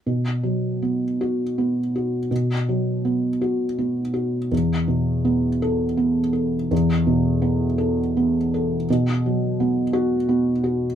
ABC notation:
X:1
M:6/8
L:1/8
Q:3/8=55
K:Edor
V:1 name="Felt piano"
z3 F2 z | z6 | z3 A2 z | z6 |
z3 F2 z |]
V:2 name="Felt piano"
B,, F, B,2 B, F | B,, F, B, F B, F | E,, B,, B,2 B, A | E,, B,, B, A B, A |
B,, F, B,2 B, F |]